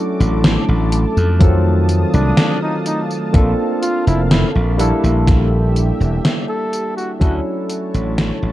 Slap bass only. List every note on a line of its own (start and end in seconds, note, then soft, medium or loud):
0.20 0.56 A1 loud
0.68 1.04 A1 loud
1.17 2.03 F2 medium
2.14 2.31 C2 medium
3.34 3.52 A#1 loud
4.07 4.43 F1 medium
4.55 4.91 A#1 loud
5.04 5.90 A#1 medium
6.00 6.18 E1 medium
7.21 7.39 D2 loud
7.94 8.30 A1 medium
8.43 8.52 A1 loud